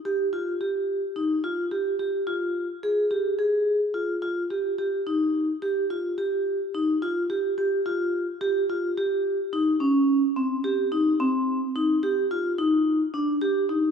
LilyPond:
\new Staff \with { instrumentName = "Vibraphone" } { \time 5/8 \key ees \major \tempo 4 = 108 g'8 f'8 g'4 ees'8 | f'8 g'8 g'8 f'4 | aes'8 g'8 aes'4 f'8 | f'8 g'8 g'8 ees'4 |
g'8 f'8 g'4 ees'8 | f'8 g'8 g'8 f'4 | g'8 f'8 g'4 ees'8 | des'4 c'8 g'8 ees'8 |
c'4 ees'8 g'8 f'8 | ees'4 d'8 g'8 ees'8 | }